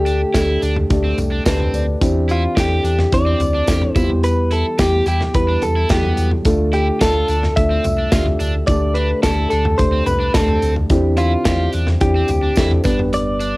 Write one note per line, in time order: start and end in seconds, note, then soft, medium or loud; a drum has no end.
0.00 0.25 D2 loud
0.00 0.58 D3 medium
0.00 0.28 A3 medium
0.00 0.28 D4 medium
0.00 0.28 G4 medium
0.00 1.70 G4 medium
0.00 0.28 A4 medium
0.06 0.20 D4 medium
0.06 closed hi-hat medium
0.06 tambourine soft
0.34 0.57 D2 loud
0.34 0.84 A3 medium
0.34 0.84 D4 medium
0.34 0.61 E4 medium
0.34 0.84 G4 medium
0.34 0.84 A4 medium
0.34 kick medium
0.34 snare medium
0.34 closed hi-hat medium
0.34 tambourine medium
0.62 0.85 D2 loud
0.62 0.75 D4 medium
0.62 closed hi-hat medium
0.62 tambourine soft
0.76 floor tom medium
0.90 1.13 D2 loud
0.90 1.40 A3 medium
0.90 1.40 D4 medium
0.90 1.40 G4 medium
0.90 1.40 A4 medium
0.90 kick loud
0.90 closed hi-hat medium
0.90 tambourine soft
1.04 1.17 C4 medium
1.18 1.41 C2 medium
1.18 closed hi-hat medium
1.18 floor tom soft
1.18 tambourine soft
1.32 1.45 D4 medium
1.45 1.69 D2 loud
1.45 1.95 A3 medium
1.45 1.85 C4 medium
1.45 1.95 D4 medium
1.45 1.96 G4 medium
1.45 1.95 B4 medium
1.45 1.72 A5 medium
1.45 kick medium
1.45 snare loud
1.45 closed hi-hat medium
1.45 tambourine medium
1.60 floor tom medium
1.73 1.96 D2 loud
1.73 2.00 D5 medium
1.73 closed hi-hat medium
1.73 tambourine soft
2.01 2.47 E2 medium
2.01 2.80 E3 medium
2.01 2.51 C4 loud
2.01 2.51 D4 medium
2.01 2.51 E4 medium
2.01 2.51 G4 loud
2.01 kick loud
2.01 closed hi-hat loud
2.01 tambourine soft
2.29 2.42 E4 medium
2.29 2.59 F4 medium
2.29 closed hi-hat medium
2.29 tambourine soft
2.56 2.80 E2 loud
2.56 3.06 C4 medium
2.56 3.06 D4 medium
2.56 3.06 E4 medium
2.56 2.83 G4 medium
2.56 3.15 G4 medium
2.56 3.06 A4 medium
2.56 kick loud
2.56 snare medium
2.56 closed hi-hat medium
2.56 tambourine medium
2.84 3.07 E2 medium
2.84 2.98 D4 medium
2.84 closed hi-hat medium
2.84 tambourine soft
2.99 snare soft
2.99 floor tom medium
3.12 3.35 E2 loud
3.12 3.62 C4 medium
3.12 3.62 D4 medium
3.12 3.62 E4 medium
3.12 3.62 G4 medium
3.12 3.93 D5 loud
3.12 kick loud
3.12 closed hi-hat medium
3.12 tambourine soft
3.26 3.39 C4 medium
3.39 3.62 D2 medium
3.39 closed hi-hat medium
3.39 floor tom medium
3.39 tambourine soft
3.54 3.67 D4 medium
3.67 3.91 E2 loud
3.67 3.95 C4 medium
3.67 3.96 D4 medium
3.67 3.94 E4 medium
3.67 3.81 G4 medium
3.67 3.96 A4 medium
3.67 kick loud
3.67 snare medium
3.67 closed hi-hat medium
3.67 tambourine medium
3.82 floor tom medium
3.93 4.64 E2 medium
3.93 4.75 E3 medium
3.93 4.70 G3 medium
3.93 4.70 B3 medium
3.93 4.70 E4 medium
3.93 4.09 E4 medium
3.93 4.02 F4 medium
3.93 4.24 C5 loud
3.93 kick loud
3.93 closed hi-hat medium
3.93 tambourine soft
4.02 4.73 G4 medium
4.10 floor tom soft
4.24 4.52 B4 loud
4.24 closed hi-hat medium
4.24 tambourine soft
4.51 4.65 E4 medium
4.51 4.78 A4 medium
4.51 closed hi-hat medium
4.78 5.02 E2 medium
4.78 5.28 G3 medium
4.78 5.29 B3 medium
4.78 5.28 E4 medium
4.78 5.28 G4 medium
4.78 5.05 G4 medium
4.78 5.07 G4 medium
4.78 kick loud
4.78 snare loud
4.78 closed hi-hat medium
4.78 tambourine medium
5.06 5.29 E2 loud
5.06 5.20 E4 medium
5.06 5.36 G4 medium
5.06 closed hi-hat medium
5.06 tambourine soft
5.21 snare soft
5.21 floor tom medium
5.34 5.57 E2 loud
5.34 5.84 G3 medium
5.34 5.84 B3 medium
5.34 5.84 E4 medium
5.34 5.84 G4 medium
5.34 5.63 B4 medium
5.34 kick loud
5.34 closed hi-hat medium
5.48 5.62 D4 medium
5.62 5.85 E2 medium
5.62 5.91 A4 medium
5.62 closed hi-hat medium
5.62 floor tom medium
5.62 tambourine soft
5.76 5.89 E4 medium
5.89 6.13 E2 loud
5.89 5.97 F#3 soft
5.89 6.29 B3 medium
5.89 6.40 B3 soft
5.89 6.40 E4 medium
5.89 6.29 G4 medium
5.89 6.40 A4 medium
5.89 kick loud
5.89 snare loud
5.89 closed hi-hat medium
5.89 tambourine medium
5.97 6.43 G3 medium
6.03 floor tom medium
6.17 6.41 E2 medium
6.17 closed hi-hat medium
6.17 tambourine soft
6.31 floor tom medium
6.45 6.91 D2 loud
6.45 7.25 D3 medium
6.45 6.95 A3 loud
6.45 6.95 D4 medium
6.45 6.95 F4 medium
6.45 6.95 A4 loud
6.45 kick loud
6.45 closed hi-hat medium
6.45 tambourine soft
6.73 6.86 E4 medium
6.73 7.02 G4 medium
6.73 closed hi-hat medium
7.01 7.24 D2 medium
7.01 7.51 A3 medium
7.01 7.51 D4 medium
7.01 7.27 F4 medium
7.01 7.51 F4 medium
7.01 7.51 A4 medium
7.01 7.53 A4 medium
7.01 kick loud
7.01 snare loud
7.01 closed hi-hat medium
7.01 tambourine medium
7.28 7.52 D2 loud
7.28 7.42 D4 medium
7.28 closed hi-hat medium
7.28 tambourine soft
7.43 snare soft
7.43 floor tom medium
7.56 7.80 D2 loud
7.56 8.06 A3 medium
7.56 8.07 D4 medium
7.56 8.07 F4 medium
7.56 8.07 A4 medium
7.56 8.67 E5 loud
7.56 kick loud
7.56 closed hi-hat medium
7.71 7.84 C4 medium
7.84 8.07 C2 medium
7.84 closed hi-hat medium
7.84 floor tom medium
7.84 tambourine medium
7.98 8.12 D4 medium
8.12 8.35 D2 medium
8.12 8.62 A3 medium
8.12 8.62 D4 medium
8.12 8.25 F4 medium
8.12 8.62 F4 medium
8.12 8.62 G4 medium
8.12 kick loud
8.12 snare loud
8.12 closed hi-hat medium
8.12 tambourine medium
8.26 floor tom medium
8.40 8.63 D2 medium
8.40 8.53 D4 medium
8.40 closed hi-hat medium
8.40 tambourine soft
8.67 9.14 D2 loud
8.67 9.47 D3 medium
8.67 9.18 A3 medium
8.67 9.18 D4 medium
8.67 9.18 G4 medium
8.67 9.18 A4 medium
8.67 8.96 D5 loud
8.67 kick loud
8.67 closed hi-hat medium
8.67 tambourine soft
8.94 9.09 D4 medium
8.94 9.21 B4 medium
8.94 closed hi-hat medium
9.23 9.46 D2 loud
9.23 9.73 A3 medium
9.23 9.73 D4 medium
9.23 9.50 E4 medium
9.23 9.74 G4 medium
9.23 9.49 A4 medium
9.23 9.73 A4 medium
9.23 kick medium
9.23 snare loud
9.23 closed hi-hat medium
9.23 tambourine medium
9.50 9.75 D2 loud
9.50 9.64 D4 medium
9.50 9.79 A4 medium
9.50 closed hi-hat medium
9.50 tambourine soft
9.65 floor tom medium
9.78 10.02 D2 loud
9.78 10.28 A3 medium
9.78 10.28 D4 medium
9.78 10.28 G4 medium
9.78 10.29 A4 medium
9.78 10.06 C5 medium
9.78 kick loud
9.78 closed hi-hat loud
9.78 tambourine soft
9.92 10.06 C4 medium
10.06 10.30 C2 medium
10.06 10.35 B4 medium
10.06 closed hi-hat medium
10.06 floor tom medium
10.06 tambourine medium
10.20 10.34 D4 medium
10.34 10.58 D2 loud
10.34 10.84 A3 medium
10.34 10.74 C4 medium
10.34 10.85 D4 medium
10.34 10.85 G4 medium
10.34 10.73 A4 medium
10.34 10.85 A4 medium
10.34 kick loud
10.34 snare loud
10.34 closed hi-hat medium
10.34 tambourine medium
10.48 floor tom medium
10.62 10.85 D2 loud
10.62 closed hi-hat medium
10.62 tambourine soft
10.76 floor tom medium
10.90 11.36 E2 loud
10.90 11.70 D3 medium
10.90 11.40 C4 loud
10.90 11.40 D4 medium
10.90 11.40 E4 medium
10.90 11.40 G4 loud
10.90 kick loud
10.90 closed hi-hat medium
10.90 tambourine soft
11.17 11.31 E4 medium
11.17 11.70 F4 loud
11.17 closed hi-hat medium
11.17 tambourine soft
11.45 11.68 E2 medium
11.45 11.95 C4 medium
11.45 11.95 D4 medium
11.45 11.95 E4 medium
11.45 11.95 G4 medium
11.45 11.72 G4 medium
11.45 kick loud
11.45 snare loud
11.45 closed hi-hat medium
11.45 tambourine medium
11.72 11.97 E2 medium
11.72 11.87 D4 medium
11.72 closed hi-hat medium
11.72 tambourine soft
11.87 snare soft
11.87 floor tom medium
12.00 12.24 E2 loud
12.00 12.51 C4 medium
12.00 12.51 D4 medium
12.00 12.51 E4 medium
12.00 12.51 G4 medium
12.00 12.81 G4 loud
12.00 kick loud
12.00 closed hi-hat medium
12.00 tambourine soft
12.16 12.29 C4 medium
12.28 12.52 D2 medium
12.28 closed hi-hat medium
12.28 floor tom medium
12.28 tambourine soft
12.43 12.56 D4 medium
12.56 12.80 E2 medium
12.56 12.85 C4 medium
12.56 12.83 D4 medium
12.56 12.85 E4 medium
12.56 12.70 E4 medium
12.56 12.85 A4 medium
12.56 kick loud
12.56 snare medium
12.56 closed hi-hat medium
12.56 tambourine medium
12.71 floor tom medium
12.84 13.53 G1 loud
12.84 13.57 G2 medium
12.84 13.57 B3 medium
12.84 13.57 D4 medium
12.84 12.98 D4 medium
12.84 13.57 G4 medium
12.84 13.57 B4 medium
12.84 kick loud
12.84 closed hi-hat medium
12.84 tambourine soft
12.99 floor tom medium
13.13 13.57 D5 loud
13.13 closed hi-hat loud
13.13 tambourine soft
13.40 13.54 D4 medium
13.40 closed hi-hat medium
13.40 tambourine soft